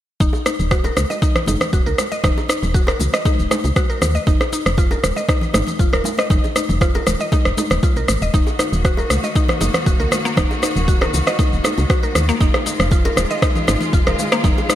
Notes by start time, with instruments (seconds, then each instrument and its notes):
0.20 fm bass D#1, synth pluck D#4, kick, shaker
0.33 high bongo, shaker
0.46 synth pluck D#4, cross-stick, muted conga, high conga, shaker
0.59 fm bass D#1, shaker
0.71 synth pluck F#4, kick, cross-stick, muted conga, shaker
0.84 synth pluck A#4, high bongo, low bongo, shaker
0.97 fm bass C#2, cross-stick, muted conga, high conga, shaker
1.10 synth pluck D#5, low bongo, shaker
1.22 synth pluck D#4, kick, muted conga, shaker
1.35 cross-stick, low conga, shaker
1.46 fm bass F#1, synth pluck D#4, high bongo, low bongo, high conga, shaker
1.61 cross-stick, muted conga, low conga, shaker
1.73 fm bass D#1, synth pluck F#4, kick, shaker
1.86 fm bass C#2, synth pluck A#4, muted conga, shaker
1.98 cross-stick, low bongo, high conga, shaker
2.12 synth pluck D#5, muted conga, shaker
2.24 fm bass D#1, synth pluck D#4, kick, cross-stick, low bongo, low conga, shaker
2.38 high bongo, shaker
2.49 synth pluck D#4, cross-stick, muted conga, high conga, shaker
2.63 fm bass D#1, low conga, shaker
2.74 synth pluck F#4, kick, muted conga, shaker
2.87 synth pluck A#4, cross-stick, high bongo, shaker
2.99 fm bass C#2, muted conga, high conga, low conga, shaker
3.13 synth pluck D#5, cross-stick, low bongo, shaker
3.25 synth pluck D#4, kick, high bongo, muted conga, high conga, shaker
3.39 fm bass D#1, shaker
3.51 synth pluck D#4, cross-stick, high bongo, low bongo, high conga, shaker
3.64 fm bass C#2, muted conga, shaker
3.76 synth pluck F#4, kick, cross-stick, high conga, shaker
3.90 synth pluck A#4, muted conga, shaker
4.01 fm bass D#2, cross-stick, high conga, low conga, shaker
4.15 synth pluck D#5, muted conga, shaker
4.27 fm bass F1, synth pluck D#4, kick, shaker
4.41 cross-stick, high bongo, shaker
4.52 synth pluck D#4, muted conga, high conga, shaker
4.66 fm bass F1, cross-stick, shaker
4.77 synth pluck F4, kick, muted conga, shaker
4.91 synth pluck A#4, high bongo, low bongo, shaker
5.03 fm bass D#1, cross-stick, muted conga, high conga, shaker
5.16 synth pluck D#5, low bongo, shaker
5.28 synth pluck D#4, kick, cross-stick, muted conga, shaker
5.41 low conga, shaker
5.54 fm bass G#1, synth pluck D#4, cross-stick, high bongo, low bongo, high conga, shaker
5.67 muted conga, low conga, shaker
5.79 fm bass F1, synth pluck F4, kick, shaker
5.93 fm bass D#1, synth pluck A#4, cross-stick, muted conga, shaker
6.04 low bongo, high conga, shaker
6.18 synth pluck D#5, cross-stick, muted conga, shaker
6.30 fm bass F1, synth pluck D#4, kick, low bongo, low conga, shaker
6.44 high bongo, shaker
6.56 synth pluck D#4, cross-stick, muted conga, high conga, shaker
6.69 fm bass F1, low conga, shaker
6.81 synth pluck F4, kick, cross-stick, muted conga, shaker
6.94 synth pluck A#4, high bongo, low bongo, shaker
7.06 fm bass D#1, cross-stick, muted conga, high conga, low conga, shaker
7.20 synth pluck D#5, low bongo, shaker
7.32 synth pluck D#4, kick, high bongo, muted conga, high conga, shaker
7.45 fm bass F1, cross-stick, shaker
7.57 synth pluck D#4, high bongo, low bongo, high conga, shaker
7.70 fm bass D#1, cross-stick, muted conga, shaker
7.83 synth pluck F4, kick, high conga, shaker
7.96 fm bass B1, synth pluck A#4, muted conga, shaker
8.08 fm bass G#1, cross-stick, high conga, low conga, shaker
8.22 fm bass D#1, synth pluck D#5, muted conga, shaker
8.34 fm bass D#1, string section D#3 A#3 F#4, synth pluck D#4, kick, shaker
8.47 high bongo, shaker
8.59 synth pluck D#4, cross-stick, muted conga, high conga, shaker
8.72 fm bass D#1, shaker
8.85 synth pluck F#4, kick, cross-stick, muted conga, shaker
8.97 synth pluck A#4, high bongo, low bongo, shaker
9.10 fm bass C#2, cross-stick, muted conga, high conga, shaker
9.23 synth pluck D#5, low bongo, shaker
9.36 synth pluck D#4, kick, muted conga, shaker
9.48 cross-stick, low conga, shaker
9.61 fm bass F#1, synth pluck D#4, high bongo, low bongo, high conga, shaker
9.73 cross-stick, muted conga, low conga, shaker
9.86 fm bass D#1, synth pluck F#4, kick, shaker
10.00 fm bass C#2, synth pluck A#4, muted conga, shaker
10.11 cross-stick, low bongo, high conga, shaker
10.25 synth pluck A#3, muted conga, shaker
10.36 fm bass D#1, synth pluck D#4, kick, cross-stick, low bongo, low conga, shaker
10.51 high bongo, shaker
10.62 synth pluck D#4, cross-stick, muted conga, high conga, shaker
10.75 fm bass D#1, low conga, shaker
10.88 synth pluck F#4, kick, muted conga, shaker
11.01 synth pluck A#4, cross-stick, high bongo, shaker
11.14 fm bass C#2, muted conga, high conga, low conga, shaker
11.27 synth pluck D#5, cross-stick, low bongo, shaker
11.39 synth pluck D#4, kick, high bongo, muted conga, high conga, shaker
11.52 fm bass D#1, shaker
11.64 synth pluck D#4, cross-stick, high bongo, low bongo, high conga, shaker
11.78 fm bass C#2, muted conga, shaker
11.90 synth pluck F#4, kick, cross-stick, high conga, shaker
12.03 synth pluck A#4, muted conga, shaker
12.15 fm bass D#2, cross-stick, high conga, low conga, shaker
12.29 synth pluck A#3, muted conga, shaker
12.41 fm bass F1, string section G#3 F4, synth pluck D#4, kick, shaker
12.54 cross-stick, high bongo, shaker
12.66 synth pluck D#4, muted conga, high conga, shaker
12.80 fm bass F1, cross-stick, shaker
12.91 synth pluck F4, kick, muted conga, shaker
13.05 synth pluck A#4, high bongo, low bongo, shaker
13.16 fm bass D#1, cross-stick, muted conga, high conga, shaker
13.31 synth pluck D#5, low bongo, shaker
13.42 synth pluck D#4, kick, cross-stick, muted conga, shaker
13.55 low conga, shaker
13.67 fm bass G#1, synth pluck D#4, cross-stick, high bongo, low bongo, high conga, shaker
13.81 muted conga, low conga, shaker
13.93 fm bass F1, synth pluck F4, kick, shaker
14.07 fm bass D#1, synth pluck A#4, cross-stick, muted conga, shaker
14.19 low bongo, high conga, shaker
14.32 synth pluck A#3, cross-stick, muted conga, shaker
14.44 fm bass F1, synth pluck D#4, kick, low bongo, low conga, shaker
14.58 high bongo, shaker
14.69 synth pluck D#4, cross-stick, muted conga, high conga, shaker